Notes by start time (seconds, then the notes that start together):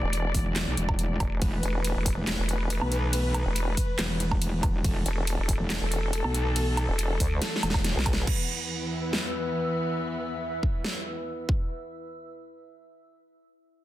Already playing: E3 A3 D5
0.03 E1
0.13 closed hi-hat
0.34 E1, kick, open hi-hat
0.56 snare, clap, closed hi-hat
0.67 B1
0.77 E1, closed hi-hat
0.89 kick, low woodblock
0.99 closed hi-hat
1.20 E1, kick, closed hi-hat, low woodblock
1.42 E1 B4, kick, closed hi-hat, ride
1.63 E1, closed hi-hat
1.85 closed hi-hat, ride
1.96 E1
2.06 kick, open hi-hat
2.17 E1
2.27 snare, clap, closed hi-hat, ride
2.39 E1
2.49 closed hi-hat
2.70 closed hi-hat, ride
2.81 B1, low woodblock
2.92 closed hi-hat
3.13 closed hi-hat, ride
3.34 closed hi-hat, low woodblock
3.46 E1
3.56 closed hi-hat, ride
3.77 kick, open hi-hat
3.99 E1, snare, clap, closed hi-hat, ride
4.20 closed hi-hat
4.31 kick, low woodblock
4.42 closed hi-hat, ride
4.63 kick, closed hi-hat, low woodblock
4.84 E1 A4, kick, closed hi-hat, ride
5.06 E1, closed hi-hat
5.27 closed hi-hat, ride
5.39 E1
5.49 kick, open hi-hat
5.60 E1
5.70 snare, clap, closed hi-hat, ride
5.81 E1
5.92 closed hi-hat
6.13 closed hi-hat, ride
6.24 B1, low woodblock
6.34 closed hi-hat
6.56 closed hi-hat, ride
6.77 closed hi-hat, low woodblock
6.89 E1
6.99 closed hi-hat, ride
7.20 D2, kick, open hi-hat
7.42 snare, closed hi-hat, ride
7.56 snare
7.63 E1, closed hi-hat, low woodblock
7.70 snare
7.74 kick, low woodblock
7.84 snare, closed hi-hat, ride
7.96 B1, snare
8.06 kick, closed hi-hat, low woodblock
8.13 snare
8.27 E2 E3 B3 E4, kick, crash
8.41 B4
8.58 E6
8.62 E5
9.13 snare
10.63 kick
10.85 snare
11.49 kick